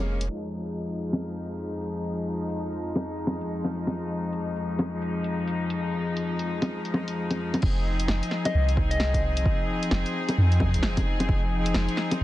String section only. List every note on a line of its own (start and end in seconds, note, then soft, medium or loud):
0.00 0.26 G#3 medium
0.00 0.26 A#3 medium
0.00 0.26 C#4 medium
0.30 7.59 F2 medium
0.30 7.59 F3 medium
0.30 7.59 G#3 medium
0.30 7.59 D#4 medium
7.62 12.24 F3 medium
7.62 12.24 C4 medium
7.62 12.24 D#4 medium
7.62 12.24 G#4 medium